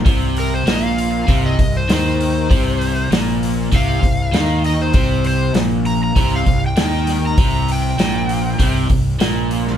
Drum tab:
HH |o-o-o-o-o-o-o-o-|o-o-o-o-o-o-o-o-|o-o-o-o-o-o-o-o-|o-o-o-o-o-o-o-o-|
SD |----o-------o---|----o-------o---|----o-------o-o-|----o-------o--o|
BD |o-------o-o-----|o-------o-o-----|o-------o-o-----|o-------o-o-----|